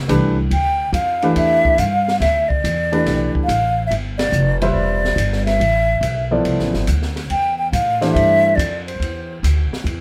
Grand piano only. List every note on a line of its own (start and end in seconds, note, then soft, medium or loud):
0.08 0.34 E3 medium
0.08 0.34 A3 medium
0.08 0.34 D4 medium
0.08 0.35 G4 medium
0.08 0.35 B4 medium
1.23 1.76 E3 medium
1.23 1.76 A3 medium
1.23 1.76 D4 medium
1.23 1.76 G4 medium
1.23 1.76 B4 medium
2.92 3.45 E3 medium
2.92 3.45 A3 medium
2.92 3.45 D4 medium
2.92 3.45 G4 medium
2.92 3.45 B4 medium
4.62 5.15 G3 medium
4.62 5.15 C4 medium
4.62 5.15 F4 medium
4.62 5.15 B4 medium
4.62 5.15 E5 medium
6.31 6.84 F3 medium
6.31 6.85 B3 medium
6.31 6.84 E4 medium
6.31 6.85 A4 medium
6.31 6.85 D5 medium
8.01 8.55 E3 medium
8.01 8.54 A3 medium
8.01 8.55 D4 medium
8.01 8.55 G4 medium
8.01 8.55 C5 medium